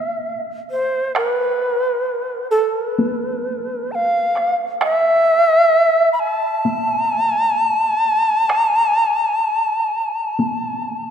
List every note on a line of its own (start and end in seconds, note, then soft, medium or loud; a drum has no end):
0.00 0.40 E5 medium
0.71 1.13 C5 medium
1.16 1.28 A#4 medium
1.16 taiko rim medium
1.28 2.48 B4 medium
2.51 2.75 A4 medium
2.75 2.91 A#4 medium
2.91 3.93 B4 medium
2.99 taiko high medium
3.92 4.55 F5 medium
3.92 3.96 A5 medium
4.36 taiko rim soft
4.81 6.09 E5 loud
4.81 taiko rim medium
6.13 6.21 B5 medium
6.20 11.11 A5 medium
6.65 taiko high soft
8.50 taiko rim soft
10.39 taiko high soft